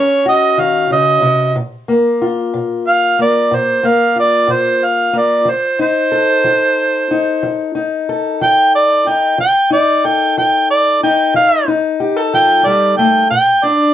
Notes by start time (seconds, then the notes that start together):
Already playing: D#3 C#4 C#5
0.26 F#4 D#5
0.58 D#3 F5
0.91 C#3 D#5
1.22 C3
1.56 A#2
1.88 A#3
2.22 F4
2.54 A#2
2.87 F5
3.19 A#3 D5
3.51 A#2 C5
3.83 A#3 F5
4.16 F4
4.20 D5
4.48 A#2
4.52 C5
4.85 F5
5.13 A#3
5.18 D5
5.45 F3
5.50 C5
5.79 D#4 C5
6.12 A4
6.44 F3
7.11 D#4
7.43 F3
7.75 D#4
8.09 A4
8.41 F3 G5
8.75 D5
9.07 D#4 G5
9.38 F3 G5
9.70 D#4 D5
10.05 A4 G5
10.38 F3 G5
10.71 D5
11.03 D#4 G5
11.34 F3 F5
11.68 D#4
12.00 G4
12.16 A4
12.34 F3 G5
12.66 G3 D5
12.98 A3 G5
13.31 A#2 G5
13.63 D4 D5